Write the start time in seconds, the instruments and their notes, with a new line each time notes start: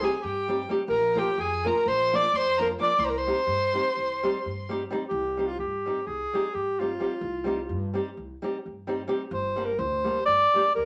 0.00 nylon-string guitar G3 C4 D#4 G4, alto saxophone G#4, violin G#5
0.22 upright bass G2, alto saxophone G4, violin G5
0.48 nylon-string guitar G3 C4 D#4 G4
0.69 nylon-string guitar G3 C4 D#4 G4
0.88 upright bass A#1, alto saxophone A#4, violin A#5
1.15 nylon-string guitar F3 A#3 D4 F4, alto saxophone G4, violin G5
1.37 upright bass F2, alto saxophone G#4, violin G#5
1.65 nylon-string guitar F3 A#3 D4 F4, alto saxophone A#4, violin A#5
1.85 upright bass A#1, alto saxophone C5, violin C6
2.13 nylon-string guitar F3 A#3 D4 F4, alto saxophone D5, violin D6
2.33 upright bass F2, violin C6
2.37 alto saxophone C5
2.58 nylon-string guitar F3 A#3 D4 F4, alto saxophone A#4, violin A#5
2.79 nylon-string guitar F3 A#3 D4 F4, alto saxophone D5, violin D6
2.99 upright bass C2, violin C6
3.05 alto saxophone C5, violin A#5
3.10 alto saxophone A#4
3.17 alto saxophone C5, violin C6
3.27 nylon-string guitar G3 C4 D#4 G4
3.47 upright bass G2
3.73 nylon-string guitar G3 C4 D#4 G4
3.97 upright bass C2
4.23 nylon-string guitar G3 C4 D#4 G4
4.46 upright bass G2
4.69 nylon-string guitar G3 C4 D#4 G4
4.91 nylon-string guitar G3 C4 D#4 G4
5.08 upright bass C2, alto saxophone G4
5.37 nylon-string guitar G3 C4 D#4 G4
5.47 alto saxophone F4
5.59 upright bass G2, alto saxophone G4
5.86 nylon-string guitar G3 C4 D#4 G4
6.07 upright bass C2, alto saxophone G#4
6.33 nylon-string guitar G3 C4 D#4 G4
6.54 upright bass G2, alto saxophone G4
6.80 nylon-string guitar G3 C4 D#4 G4, alto saxophone F4
7.00 nylon-string guitar G3 C4 D#4 G4
7.21 upright bass C2
7.44 nylon-string guitar G3 C4 D#4 G4
7.69 upright bass G2
7.94 nylon-string guitar G3 C4 D#4 G4
8.17 upright bass C2
8.42 nylon-string guitar G3 C4 D#4 G4
8.66 upright bass G2
8.87 nylon-string guitar G3 C4 D#4 G4
9.07 nylon-string guitar G3 C4 D#4 G4
9.31 upright bass G1, alto saxophone C5
9.56 nylon-string guitar G3 A#3 D4 G4
9.65 alto saxophone A#4
9.79 upright bass D2, alto saxophone C5
10.04 nylon-string guitar G3 A#3 D4 G4
10.26 upright bass G1, alto saxophone D5
10.54 nylon-string guitar G3 A#3 D4 G4
10.75 upright bass D2, alto saxophone A#4